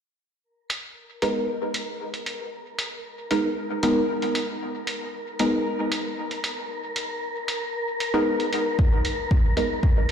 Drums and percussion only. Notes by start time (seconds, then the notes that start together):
0.70 closed hi-hat
1.22 closed hi-hat
1.74 closed hi-hat
2.14 closed hi-hat
2.26 closed hi-hat
2.79 closed hi-hat
3.31 closed hi-hat
3.83 closed hi-hat
4.22 closed hi-hat
4.35 closed hi-hat
4.87 closed hi-hat
5.39 closed hi-hat
5.92 closed hi-hat
6.31 closed hi-hat
6.44 closed hi-hat
6.96 closed hi-hat
7.48 closed hi-hat
8.00 closed hi-hat
8.40 closed hi-hat
8.53 closed hi-hat
8.79 kick
9.05 closed hi-hat
9.31 kick
9.57 closed hi-hat
9.83 kick